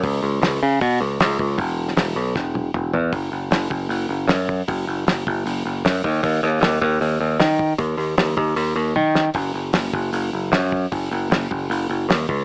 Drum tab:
HH |o---o---o---o---|o---o-----------|o---o---o---o---|o---o---o---o---|
SD |----o-------o---|---oo---o-------|----o-------o---|----o-------o---|
T1 |----------------|----------o-----|----------------|----------------|
T2 |----------------|------------o---|----------------|----------------|
FT |----------------|--------------o-|----------------|----------------|
BD |o-------o-----o-|o-------o-------|o-----o-------o-|o-----o-------o-|

HH |o---o---o---o---|o---o---o-------|o---o---o---o---|o---o---o---o---|
SD |----o-------o---|----o---------o-|----o-------o---|----o-------o---|
T1 |----------------|------------o---|----------------|----------------|
T2 |----------------|----------------|----------------|----------------|
FT |----------------|----------------|----------------|----------------|
BD |o-----o-------o-|o-----o---------|o-----o-------o-|o-----o-------o-|